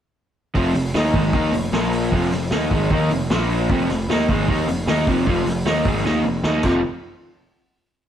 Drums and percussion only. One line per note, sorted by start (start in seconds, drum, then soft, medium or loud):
0.55 kick loud
0.55 open hi-hat medium
0.75 open hi-hat medium
0.95 snare loud
0.95 open hi-hat medium
1.14 kick loud
1.14 open hi-hat medium
1.33 kick loud
1.33 open hi-hat medium
1.53 open hi-hat medium
1.73 snare loud
1.73 open hi-hat medium
1.92 open hi-hat medium
2.12 kick loud
2.12 open hi-hat medium
2.32 snare soft
2.32 open hi-hat medium
2.50 snare loud
2.50 open hi-hat medium
2.71 kick loud
2.71 open hi-hat medium
2.90 kick loud
2.90 open hi-hat medium
3.11 open hi-hat medium
3.30 snare loud
3.30 open hi-hat medium
3.50 open hi-hat medium
3.69 kick loud
3.69 open hi-hat medium
3.90 snare soft
3.90 open hi-hat medium
4.10 snare loud
4.10 open hi-hat medium
4.29 kick loud
4.29 open hi-hat medium
4.48 kick loud
4.48 open hi-hat medium
4.68 open hi-hat medium
4.87 snare loud
4.87 open hi-hat medium
5.07 kick loud
5.07 open hi-hat medium
5.27 kick loud
5.27 open hi-hat medium
5.47 snare soft
5.47 open hi-hat medium
5.66 snare loud
5.66 open hi-hat medium
5.85 kick loud
5.85 open hi-hat medium
6.05 snare medium
6.44 snare medium
6.63 kick loud
6.63 crash medium